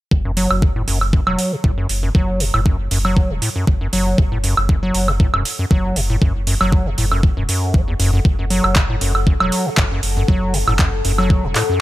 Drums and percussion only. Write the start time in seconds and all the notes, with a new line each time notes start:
0.11 kick
0.37 open hi-hat
0.51 high woodblock
0.62 kick
0.88 open hi-hat
1.01 high woodblock
1.13 kick
1.27 high woodblock
1.39 open hi-hat
1.64 kick
1.89 open hi-hat
2.15 kick
2.40 open hi-hat
2.54 high woodblock
2.66 kick
2.91 open hi-hat
3.05 high woodblock
3.17 kick
3.42 open hi-hat
3.67 kick
3.93 open hi-hat
4.18 kick
4.44 open hi-hat
4.57 high woodblock
4.69 kick
4.95 open hi-hat
5.08 high woodblock
5.20 kick
5.34 high woodblock
5.45 open hi-hat
5.71 kick
5.96 open hi-hat
6.22 kick
6.47 open hi-hat
6.61 high woodblock
6.72 kick
6.98 open hi-hat
7.12 high woodblock
7.23 kick
7.49 open hi-hat
7.74 kick
8.00 open hi-hat
8.25 kick
8.50 open hi-hat
8.64 high woodblock
8.76 kick, clap
9.01 open hi-hat
9.15 high woodblock
9.27 kick
9.40 high woodblock
9.52 open hi-hat
9.77 kick, clap
10.03 open hi-hat
10.28 kick
10.54 open hi-hat
10.68 high woodblock
10.79 kick, clap
11.05 open hi-hat
11.18 high woodblock
11.30 kick
11.55 clap, open hi-hat